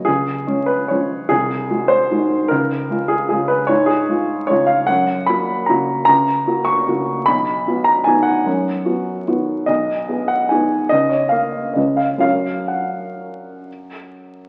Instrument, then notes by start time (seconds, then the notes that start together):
grand piano
0.05 C#2 G#4
0.47 G#3 C#4
0.66 B4
0.88 F3 G#3 C#4 C#5
1.29 C2 G#4
1.70 G#3 F#4
1.88 C5
2.11 D#3 G#3 F#4
2.48 C#2 A#4
2.90 G#3 F4
3.08 G#4
3.29 C#3 G#3 F4 G#4
3.48 B4
3.67 G#2 C#5
3.86 G#4
4.08 G#3 F4
4.47 C#3 G#3 F4 C#5
4.67 F5
4.87 F#2 F#5
5.26 A#3 F#4 B5
5.66 C#3 A#3 F#4 A#5
6.05 C#2 A#5
6.47 A#3 F#4
6.65 C#6
6.87 C#3 A#3 F#4
7.26 B1 B5
7.67 B3 F#4
7.84 A#5
8.04 D#3 B3 F#4 G#5
8.23 F#5
8.46 F#2
8.85 B3 F#4
9.27 D#3 B3 F#4
9.66 B1 D#5
10.09 B3 G#4
10.28 F#5
10.49 D#3 B3 G#4 G#5
10.89 C#2 D#5
11.09 C#5
11.29 A#3 A#4 F5
11.74 C#2 G#3 C#4 B4 D#5
11.97 F5
12.18 F#2 F#3 C#4 A#4 F5
12.68 F#5